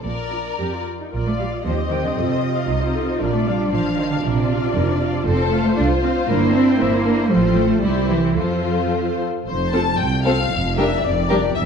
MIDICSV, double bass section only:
0, 0, Header, 1, 2, 480
1, 0, Start_track
1, 0, Key_signature, -2, "major"
1, 0, Tempo, 539084
1, 25, Time_signature, 2, 2, 24, 8
1, 1464, Tempo, 515464
1, 4831, Key_signature, -1, "major"
1, 7224, Tempo, 545455
1, 8664, Tempo, 521286
1, 10679, End_track
2, 0, Start_track
2, 0, Title_t, "Double bass section"
2, 0, Program_c, 0, 48
2, 22, Note_on_c, 0, 34, 36
2, 411, Note_off_c, 0, 34, 0
2, 1000, Note_on_c, 0, 34, 45
2, 1369, Note_off_c, 0, 34, 0
2, 1471, Note_on_c, 0, 39, 47
2, 1850, Note_off_c, 0, 39, 0
2, 1952, Note_on_c, 0, 41, 47
2, 2329, Note_off_c, 0, 41, 0
2, 2429, Note_on_c, 0, 36, 42
2, 2811, Note_off_c, 0, 36, 0
2, 2907, Note_on_c, 0, 34, 47
2, 3292, Note_off_c, 0, 34, 0
2, 3389, Note_on_c, 0, 33, 48
2, 3773, Note_off_c, 0, 33, 0
2, 3874, Note_on_c, 0, 34, 51
2, 4256, Note_off_c, 0, 34, 0
2, 4352, Note_on_c, 0, 29, 55
2, 4729, Note_off_c, 0, 29, 0
2, 4830, Note_on_c, 0, 29, 58
2, 5207, Note_off_c, 0, 29, 0
2, 5313, Note_on_c, 0, 36, 54
2, 5691, Note_off_c, 0, 36, 0
2, 5784, Note_on_c, 0, 31, 59
2, 6161, Note_off_c, 0, 31, 0
2, 6268, Note_on_c, 0, 31, 63
2, 6640, Note_off_c, 0, 31, 0
2, 6737, Note_on_c, 0, 33, 50
2, 7190, Note_off_c, 0, 33, 0
2, 7221, Note_on_c, 0, 36, 47
2, 7689, Note_off_c, 0, 36, 0
2, 7700, Note_on_c, 0, 41, 41
2, 8481, Note_off_c, 0, 41, 0
2, 8665, Note_on_c, 0, 29, 48
2, 9069, Note_off_c, 0, 29, 0
2, 9152, Note_on_c, 0, 36, 48
2, 9551, Note_off_c, 0, 36, 0
2, 9633, Note_on_c, 0, 29, 48
2, 10028, Note_off_c, 0, 29, 0
2, 10113, Note_on_c, 0, 29, 50
2, 10508, Note_off_c, 0, 29, 0
2, 10590, Note_on_c, 0, 28, 54
2, 10679, Note_off_c, 0, 28, 0
2, 10679, End_track
0, 0, End_of_file